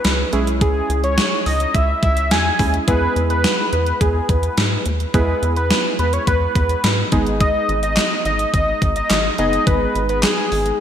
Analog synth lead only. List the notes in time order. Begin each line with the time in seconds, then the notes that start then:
Already playing: B4
0.61 G#4
1.04 C#5
1.46 D#5
1.75 E5
2.03 E5
2.31 G#5
2.88 B4
3.30 B4
3.73 B4
4.01 G#4
4.29 B4
5.14 B4
5.57 B4
5.99 B4
6.13 C#5
6.28 B4
6.56 B4
7.41 D#5
7.83 D#5
8.26 D#5
8.54 D#5
8.96 D#5
9.39 D#5
9.67 B4
10.09 B4
10.24 G#4